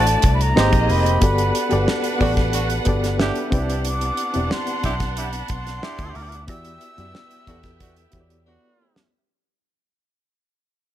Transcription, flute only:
0.00 0.34 A5 medium
0.34 0.43 B5 medium
0.42 0.93 A#5 loud
0.91 1.89 B5 medium
3.87 4.54 D6 medium
4.52 5.19 C6 loud
5.18 5.52 B5 medium
5.50 6.17 C6 loud
6.15 6.48 D6 medium
6.49 8.42 E6 loud

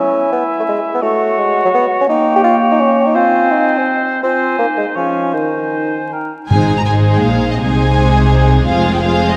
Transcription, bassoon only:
0.00 0.31 C#4 medium
0.32 0.44 B3 medium
0.59 0.63 A3 medium
0.69 0.80 G#3 medium
0.94 1.02 B3 medium
1.02 1.40 A3 medium
1.38 1.64 G#3 medium
1.65 1.69 F#3 medium
1.74 1.86 B3 medium
2.01 2.04 C#4 medium
2.09 2.34 D#4 medium
2.36 2.40 G4 medium
2.44 2.56 F4 medium
2.71 2.82 D#4 medium
2.80 3.08 C#4 medium
3.07 3.17 D#4 medium
3.15 3.53 F4 medium
3.52 3.80 D#4 medium
3.78 3.87 C4 medium
4.23 4.56 C4 medium
4.59 4.67 A#3 medium
4.78 4.86 G#3 medium
4.96 5.36 F3 soft
5.35 6.12 D#3 soft

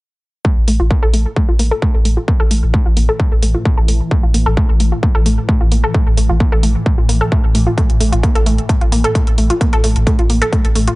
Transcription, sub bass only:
0.57 0.67 A1 medium
0.68 0.79 A1 medium
0.80 0.90 A1 medium
1.03 1.13 A1 medium
1.13 1.25 A1 loud
1.48 1.59 A1 medium
1.59 1.71 A1 loud
1.94 2.04 A1 medium
2.05 2.17 A1 loud
2.40 2.50 A1 medium
2.51 2.62 A1 loud
2.63 2.74 A1 medium
2.86 2.96 A1 medium
2.97 3.09 A1 loud
3.32 3.42 A1 medium
3.43 3.54 A1 medium
3.77 3.88 A1 medium
3.88 4.00 A1 medium
4.23 4.34 A1 medium
4.34 4.46 A1 medium
4.46 4.57 A1 medium
4.69 4.79 A1 medium
4.80 4.92 A1 loud
5.15 5.25 A1 medium
5.26 5.38 A1 loud
5.61 5.71 A1 medium
5.72 5.83 A1 medium
6.07 6.17 A1 medium
6.18 6.29 A1 medium
6.29 6.40 A1 medium
6.52 6.63 A1 medium
6.63 6.75 A1 loud
6.98 7.08 A1 medium
7.09 7.21 A1 loud
7.44 7.54 A1 medium
7.55 7.67 A1 loud
7.90 8.00 A1 medium
8.01 8.12 A1 medium
8.13 8.23 A1 medium
8.36 8.46 A1 medium
8.46 8.58 A1 medium
8.81 8.92 A1 medium
8.92 9.04 A1 loud
9.27 9.38 A1 medium
9.38 9.50 A1 loud
9.73 9.83 A1 medium
9.84 9.95 A1 medium
9.96 10.07 A1 medium
10.19 10.29 A1 medium
10.30 10.41 A1 loud
10.65 10.75 A1 medium
10.75 10.87 A1 medium

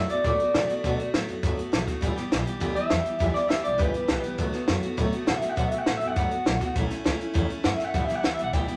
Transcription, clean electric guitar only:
0.10 0.24 D5 loud
0.26 1.11 D5 loud
2.75 3.33 E5 loud
3.34 3.49 D5 loud
3.49 3.63 E5 medium
3.64 3.79 D5 medium
3.79 4.65 B4 loud
5.29 5.38 F#5 loud
5.38 5.49 E5 medium
5.49 5.57 F#5 medium
5.58 5.68 F#5 loud
5.68 5.78 E5 medium
5.78 5.87 F#5 loud
5.88 5.97 F#5 loud
5.97 6.07 E5 loud
6.07 6.16 F#5 medium
6.17 6.75 F#5 loud
7.65 7.74 F#5 loud
7.74 7.84 E5 medium
7.84 7.94 F#5 medium
7.95 8.05 F#5 loud
8.05 8.15 E5 medium
8.15 8.24 F#5 medium
8.25 8.34 F#5 loud
8.34 8.43 E5 medium
8.44 8.53 F#5 loud
8.54 8.76 G5 loud

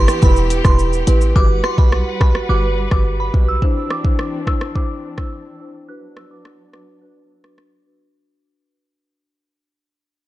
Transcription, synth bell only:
0.23 0.33 B5 medium
0.65 0.76 C6 medium
1.36 1.46 D6 loud
1.64 1.75 C6 medium
1.79 1.89 B5 medium
2.21 2.31 B5 medium
2.49 2.60 D6 medium
2.92 3.02 D6 medium
3.20 3.30 B5 medium
3.48 3.59 E6 medium
3.91 4.01 D6 medium
4.47 4.58 E6 medium
4.75 4.86 D6 medium
5.18 5.28 E6 medium
5.89 5.99 F#6 medium
6.17 6.27 E6 medium
6.31 6.42 D6 medium
6.73 6.84 D6 medium
7.01 7.12 F#6 medium
7.44 7.55 D6 medium

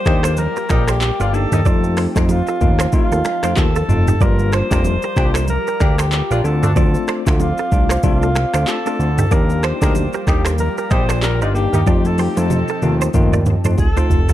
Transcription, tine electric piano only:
0.06 0.30 A#3 medium
0.06 0.30 D4 medium
0.06 0.31 D#4 medium
0.06 0.31 G4 medium
1.33 1.58 A#3 medium
1.33 1.58 D4 medium
1.33 1.58 D#4 medium
1.33 1.58 G4 medium
1.65 2.11 A3 medium
1.65 2.11 C4 medium
1.65 2.11 D#4 medium
1.65 2.12 F4 loud
2.16 2.38 A3 medium
2.16 2.38 C4 medium
2.16 2.38 D#4 medium
2.16 2.38 F4 medium
2.61 2.86 A3 medium
2.61 2.86 C4 medium
2.61 2.86 D#4 medium
2.61 2.86 F4 medium
2.93 3.18 A3 medium
2.93 3.18 C4 medium
2.93 3.18 D#4 medium
2.93 3.18 F4 loud
3.43 3.65 A3 medium
3.43 3.65 C4 medium
3.43 3.65 D#4 medium
3.43 3.66 F4 medium
3.89 4.13 A3 medium
3.89 4.13 C4 medium
3.89 4.14 D#4 medium
3.89 4.14 F4 medium
4.21 4.67 G3 medium
4.21 4.67 A#3 medium
4.21 4.67 D4 medium
4.21 4.67 F4 loud
4.71 4.93 G3 medium
4.71 4.93 A#3 medium
4.71 4.93 D4 medium
4.71 4.93 F4 medium
5.16 5.41 G3 medium
5.16 5.41 A#3 medium
5.16 5.41 D4 medium
5.16 5.41 F4 medium
6.44 6.69 A3 medium
6.44 6.69 C4 medium
6.44 6.69 D4 medium
6.44 6.69 F4 medium
6.76 7.22 A3 medium
6.76 7.22 C4 medium
6.76 7.22 D4 medium
6.76 7.22 F4 loud
7.26 7.48 A3 medium
7.26 7.48 C4 medium
7.26 7.48 D4 medium
7.26 7.49 F4 medium
7.72 7.96 A3 medium
7.72 7.96 C4 medium
7.72 7.97 D4 medium
7.72 7.97 F4 medium
8.03 8.28 A3 medium
8.03 8.28 C4 medium
8.03 8.28 D4 medium
8.03 8.28 F4 loud
8.54 8.76 A3 medium
8.54 8.76 C4 medium
8.54 8.76 D4 medium
8.54 8.76 F4 medium
8.86 9.08 A3 medium
8.86 9.08 C4 medium
8.86 9.08 D4 medium
8.86 9.08 F4 medium
9.31 9.77 A#3 medium
9.31 9.77 D4 medium
9.31 9.77 D#4 medium
9.31 9.77 G4 loud
9.82 10.04 A#3 medium
9.82 10.04 D4 medium
9.82 10.04 D#4 medium
9.82 10.04 G4 medium
10.27 10.52 A#3 medium
10.27 10.52 D4 medium
10.27 10.52 D#4 medium
10.27 10.52 G4 medium
11.54 11.79 A#3 medium
11.54 11.79 D4 medium
11.54 11.79 D#4 medium
11.54 11.79 G4 medium
11.86 12.32 A3 medium
11.86 12.33 C4 medium
11.86 12.33 D#4 medium
11.86 12.33 F4 loud
12.37 12.59 A3 medium
12.37 12.59 C4 medium
12.37 12.59 D#4 medium
12.37 12.59 F4 medium
12.82 13.07 A3 medium
12.82 13.07 C4 medium
12.82 13.07 D#4 medium
12.82 13.07 F4 medium
13.14 13.39 A3 loud
13.14 13.39 C4 medium
13.14 13.39 D#4 medium
13.14 13.39 F4 loud
13.64 13.86 A3 medium
13.64 13.87 C4 medium
13.64 13.87 D#4 medium
13.64 13.87 F4 medium
13.96 14.18 A3 medium
13.96 14.18 C4 medium
13.96 14.19 D#4 medium
13.96 14.19 F4 medium

